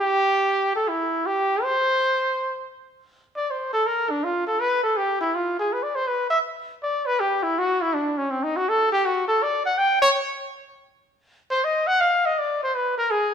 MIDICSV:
0, 0, Header, 1, 2, 480
1, 0, Start_track
1, 0, Tempo, 370142
1, 178, Time_signature, 4, 2, 24, 8
1, 17301, End_track
2, 0, Start_track
2, 0, Title_t, "Trumpet"
2, 0, Program_c, 0, 56
2, 4, Note_on_c, 0, 67, 101
2, 919, Note_off_c, 0, 67, 0
2, 980, Note_on_c, 0, 69, 81
2, 1152, Note_on_c, 0, 64, 81
2, 1171, Note_off_c, 0, 69, 0
2, 1636, Note_on_c, 0, 67, 95
2, 1655, Note_off_c, 0, 64, 0
2, 2112, Note_on_c, 0, 72, 99
2, 2131, Note_off_c, 0, 67, 0
2, 3549, Note_off_c, 0, 72, 0
2, 4357, Note_on_c, 0, 74, 80
2, 4545, Note_on_c, 0, 72, 66
2, 4565, Note_off_c, 0, 74, 0
2, 4827, Note_off_c, 0, 72, 0
2, 4835, Note_on_c, 0, 69, 87
2, 5010, Note_on_c, 0, 70, 81
2, 5029, Note_off_c, 0, 69, 0
2, 5314, Note_on_c, 0, 62, 74
2, 5334, Note_off_c, 0, 70, 0
2, 5495, Note_on_c, 0, 65, 67
2, 5515, Note_off_c, 0, 62, 0
2, 5784, Note_off_c, 0, 65, 0
2, 5792, Note_on_c, 0, 69, 83
2, 5967, Note_on_c, 0, 71, 93
2, 5987, Note_off_c, 0, 69, 0
2, 6261, Note_off_c, 0, 71, 0
2, 6269, Note_on_c, 0, 69, 76
2, 6445, Note_on_c, 0, 67, 75
2, 6465, Note_off_c, 0, 69, 0
2, 6742, Note_off_c, 0, 67, 0
2, 6749, Note_on_c, 0, 64, 78
2, 6934, Note_on_c, 0, 65, 67
2, 6953, Note_off_c, 0, 64, 0
2, 7238, Note_off_c, 0, 65, 0
2, 7249, Note_on_c, 0, 68, 82
2, 7427, Note_on_c, 0, 71, 70
2, 7446, Note_off_c, 0, 68, 0
2, 7558, Note_on_c, 0, 74, 77
2, 7578, Note_off_c, 0, 71, 0
2, 7718, Note_on_c, 0, 72, 88
2, 7738, Note_off_c, 0, 74, 0
2, 7875, Note_on_c, 0, 71, 78
2, 7895, Note_off_c, 0, 72, 0
2, 8163, Note_off_c, 0, 71, 0
2, 8171, Note_on_c, 0, 76, 91
2, 8274, Note_off_c, 0, 76, 0
2, 8855, Note_on_c, 0, 74, 81
2, 9155, Note_on_c, 0, 71, 92
2, 9175, Note_off_c, 0, 74, 0
2, 9337, Note_on_c, 0, 67, 79
2, 9357, Note_off_c, 0, 71, 0
2, 9634, Note_on_c, 0, 64, 87
2, 9654, Note_off_c, 0, 67, 0
2, 9835, Note_on_c, 0, 66, 84
2, 9855, Note_off_c, 0, 64, 0
2, 10134, Note_on_c, 0, 64, 89
2, 10154, Note_off_c, 0, 66, 0
2, 10295, Note_on_c, 0, 62, 72
2, 10314, Note_off_c, 0, 64, 0
2, 10605, Note_on_c, 0, 61, 67
2, 10625, Note_off_c, 0, 62, 0
2, 10770, Note_on_c, 0, 60, 66
2, 10789, Note_off_c, 0, 61, 0
2, 10934, Note_on_c, 0, 63, 71
2, 10954, Note_off_c, 0, 60, 0
2, 11103, Note_on_c, 0, 66, 79
2, 11123, Note_off_c, 0, 63, 0
2, 11266, Note_on_c, 0, 69, 87
2, 11286, Note_off_c, 0, 66, 0
2, 11559, Note_off_c, 0, 69, 0
2, 11566, Note_on_c, 0, 67, 92
2, 11739, Note_on_c, 0, 66, 82
2, 11759, Note_off_c, 0, 67, 0
2, 12023, Note_off_c, 0, 66, 0
2, 12031, Note_on_c, 0, 69, 89
2, 12226, Note_on_c, 0, 74, 83
2, 12246, Note_off_c, 0, 69, 0
2, 12512, Note_off_c, 0, 74, 0
2, 12520, Note_on_c, 0, 78, 89
2, 12680, Note_on_c, 0, 79, 97
2, 12699, Note_off_c, 0, 78, 0
2, 12982, Note_off_c, 0, 79, 0
2, 12990, Note_on_c, 0, 73, 113
2, 13087, Note_off_c, 0, 73, 0
2, 14922, Note_on_c, 0, 72, 99
2, 15099, Note_on_c, 0, 75, 93
2, 15119, Note_off_c, 0, 72, 0
2, 15394, Note_on_c, 0, 78, 110
2, 15413, Note_off_c, 0, 75, 0
2, 15570, Note_on_c, 0, 77, 90
2, 15590, Note_off_c, 0, 78, 0
2, 15892, Note_on_c, 0, 75, 86
2, 15912, Note_off_c, 0, 77, 0
2, 16063, Note_on_c, 0, 74, 75
2, 16083, Note_off_c, 0, 75, 0
2, 16358, Note_off_c, 0, 74, 0
2, 16378, Note_on_c, 0, 72, 88
2, 16537, Note_on_c, 0, 71, 74
2, 16557, Note_off_c, 0, 72, 0
2, 16820, Note_off_c, 0, 71, 0
2, 16828, Note_on_c, 0, 70, 94
2, 16995, Note_on_c, 0, 68, 85
2, 17015, Note_off_c, 0, 70, 0
2, 17301, Note_off_c, 0, 68, 0
2, 17301, End_track
0, 0, End_of_file